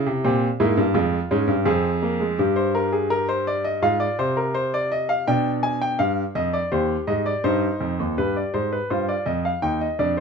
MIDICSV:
0, 0, Header, 1, 2, 480
1, 0, Start_track
1, 0, Key_signature, -4, "minor"
1, 0, Tempo, 721154
1, 1596, Time_signature, 4, 2, 24, 8
1, 6790, End_track
2, 0, Start_track
2, 0, Title_t, "Grand piano"
2, 0, Program_c, 0, 0
2, 0, Note_on_c, 0, 64, 79
2, 42, Note_on_c, 0, 48, 75
2, 144, Note_off_c, 0, 64, 0
2, 158, Note_off_c, 0, 48, 0
2, 162, Note_on_c, 0, 67, 65
2, 163, Note_on_c, 0, 46, 82
2, 163, Note_on_c, 0, 60, 75
2, 310, Note_off_c, 0, 67, 0
2, 311, Note_off_c, 0, 46, 0
2, 311, Note_off_c, 0, 60, 0
2, 399, Note_on_c, 0, 44, 86
2, 399, Note_on_c, 0, 58, 69
2, 399, Note_on_c, 0, 64, 68
2, 514, Note_on_c, 0, 43, 79
2, 516, Note_off_c, 0, 44, 0
2, 547, Note_off_c, 0, 58, 0
2, 548, Note_off_c, 0, 64, 0
2, 628, Note_on_c, 0, 65, 65
2, 629, Note_on_c, 0, 56, 64
2, 630, Note_on_c, 0, 41, 79
2, 633, Note_off_c, 0, 43, 0
2, 781, Note_off_c, 0, 41, 0
2, 781, Note_off_c, 0, 56, 0
2, 871, Note_on_c, 0, 61, 66
2, 872, Note_on_c, 0, 44, 81
2, 981, Note_on_c, 0, 43, 76
2, 991, Note_off_c, 0, 44, 0
2, 1021, Note_off_c, 0, 61, 0
2, 1097, Note_off_c, 0, 65, 0
2, 1101, Note_on_c, 0, 60, 72
2, 1102, Note_on_c, 0, 41, 81
2, 1102, Note_on_c, 0, 68, 76
2, 1105, Note_off_c, 0, 43, 0
2, 1255, Note_off_c, 0, 60, 0
2, 1348, Note_on_c, 0, 58, 63
2, 1466, Note_on_c, 0, 56, 61
2, 1468, Note_off_c, 0, 58, 0
2, 1574, Note_off_c, 0, 41, 0
2, 1574, Note_off_c, 0, 68, 0
2, 1588, Note_off_c, 0, 56, 0
2, 1588, Note_on_c, 0, 67, 71
2, 1591, Note_on_c, 0, 43, 75
2, 1705, Note_on_c, 0, 72, 71
2, 1827, Note_off_c, 0, 72, 0
2, 1829, Note_on_c, 0, 70, 75
2, 1947, Note_on_c, 0, 68, 66
2, 1949, Note_off_c, 0, 70, 0
2, 2066, Note_on_c, 0, 70, 84
2, 2067, Note_off_c, 0, 68, 0
2, 2186, Note_off_c, 0, 70, 0
2, 2188, Note_on_c, 0, 72, 80
2, 2307, Note_off_c, 0, 72, 0
2, 2312, Note_on_c, 0, 74, 81
2, 2426, Note_on_c, 0, 75, 74
2, 2428, Note_off_c, 0, 74, 0
2, 2522, Note_off_c, 0, 67, 0
2, 2523, Note_off_c, 0, 43, 0
2, 2544, Note_on_c, 0, 44, 68
2, 2545, Note_off_c, 0, 75, 0
2, 2546, Note_on_c, 0, 65, 70
2, 2547, Note_on_c, 0, 77, 76
2, 2662, Note_on_c, 0, 74, 74
2, 2666, Note_off_c, 0, 77, 0
2, 2695, Note_off_c, 0, 44, 0
2, 2783, Note_off_c, 0, 74, 0
2, 2787, Note_on_c, 0, 48, 69
2, 2789, Note_on_c, 0, 72, 78
2, 2907, Note_off_c, 0, 72, 0
2, 2908, Note_on_c, 0, 70, 69
2, 3025, Note_on_c, 0, 72, 79
2, 3027, Note_off_c, 0, 70, 0
2, 3146, Note_off_c, 0, 72, 0
2, 3154, Note_on_c, 0, 74, 82
2, 3271, Note_off_c, 0, 74, 0
2, 3272, Note_on_c, 0, 75, 78
2, 3388, Note_on_c, 0, 77, 73
2, 3390, Note_off_c, 0, 75, 0
2, 3484, Note_off_c, 0, 65, 0
2, 3489, Note_off_c, 0, 48, 0
2, 3507, Note_off_c, 0, 77, 0
2, 3510, Note_on_c, 0, 47, 68
2, 3511, Note_on_c, 0, 79, 80
2, 3512, Note_on_c, 0, 62, 68
2, 3661, Note_off_c, 0, 79, 0
2, 3747, Note_on_c, 0, 80, 83
2, 3866, Note_off_c, 0, 80, 0
2, 3871, Note_on_c, 0, 79, 79
2, 3977, Note_off_c, 0, 47, 0
2, 3986, Note_on_c, 0, 77, 75
2, 3988, Note_off_c, 0, 79, 0
2, 3989, Note_on_c, 0, 43, 64
2, 4137, Note_off_c, 0, 77, 0
2, 4139, Note_off_c, 0, 43, 0
2, 4229, Note_on_c, 0, 41, 65
2, 4229, Note_on_c, 0, 75, 80
2, 4347, Note_off_c, 0, 75, 0
2, 4349, Note_on_c, 0, 74, 73
2, 4379, Note_off_c, 0, 41, 0
2, 4445, Note_off_c, 0, 62, 0
2, 4467, Note_off_c, 0, 74, 0
2, 4471, Note_on_c, 0, 39, 64
2, 4471, Note_on_c, 0, 67, 68
2, 4471, Note_on_c, 0, 72, 70
2, 4621, Note_off_c, 0, 39, 0
2, 4621, Note_off_c, 0, 72, 0
2, 4708, Note_on_c, 0, 44, 68
2, 4708, Note_on_c, 0, 75, 76
2, 4828, Note_off_c, 0, 75, 0
2, 4831, Note_on_c, 0, 74, 74
2, 4859, Note_off_c, 0, 44, 0
2, 4939, Note_off_c, 0, 67, 0
2, 4950, Note_off_c, 0, 74, 0
2, 4952, Note_on_c, 0, 43, 70
2, 4952, Note_on_c, 0, 63, 64
2, 4952, Note_on_c, 0, 72, 81
2, 5103, Note_off_c, 0, 43, 0
2, 5195, Note_on_c, 0, 41, 63
2, 5313, Note_off_c, 0, 41, 0
2, 5321, Note_on_c, 0, 39, 58
2, 5423, Note_off_c, 0, 63, 0
2, 5423, Note_off_c, 0, 72, 0
2, 5437, Note_off_c, 0, 39, 0
2, 5440, Note_on_c, 0, 67, 53
2, 5444, Note_on_c, 0, 43, 52
2, 5445, Note_on_c, 0, 71, 67
2, 5559, Note_off_c, 0, 71, 0
2, 5567, Note_on_c, 0, 74, 60
2, 5593, Note_off_c, 0, 43, 0
2, 5681, Note_off_c, 0, 74, 0
2, 5683, Note_on_c, 0, 44, 58
2, 5683, Note_on_c, 0, 72, 62
2, 5799, Note_off_c, 0, 72, 0
2, 5808, Note_on_c, 0, 71, 59
2, 5832, Note_off_c, 0, 44, 0
2, 5909, Note_off_c, 0, 67, 0
2, 5922, Note_off_c, 0, 71, 0
2, 5926, Note_on_c, 0, 43, 52
2, 5926, Note_on_c, 0, 72, 62
2, 5927, Note_on_c, 0, 65, 58
2, 6041, Note_off_c, 0, 72, 0
2, 6048, Note_on_c, 0, 74, 61
2, 6074, Note_off_c, 0, 43, 0
2, 6161, Note_on_c, 0, 75, 69
2, 6162, Note_off_c, 0, 74, 0
2, 6165, Note_on_c, 0, 41, 62
2, 6278, Note_off_c, 0, 75, 0
2, 6290, Note_on_c, 0, 77, 59
2, 6312, Note_off_c, 0, 41, 0
2, 6390, Note_off_c, 0, 65, 0
2, 6403, Note_off_c, 0, 77, 0
2, 6405, Note_on_c, 0, 63, 56
2, 6405, Note_on_c, 0, 79, 71
2, 6409, Note_on_c, 0, 39, 55
2, 6520, Note_off_c, 0, 79, 0
2, 6530, Note_on_c, 0, 75, 62
2, 6553, Note_off_c, 0, 63, 0
2, 6555, Note_off_c, 0, 39, 0
2, 6643, Note_off_c, 0, 75, 0
2, 6650, Note_on_c, 0, 41, 60
2, 6650, Note_on_c, 0, 62, 61
2, 6650, Note_on_c, 0, 74, 67
2, 6762, Note_off_c, 0, 74, 0
2, 6790, Note_off_c, 0, 41, 0
2, 6790, Note_off_c, 0, 62, 0
2, 6790, End_track
0, 0, End_of_file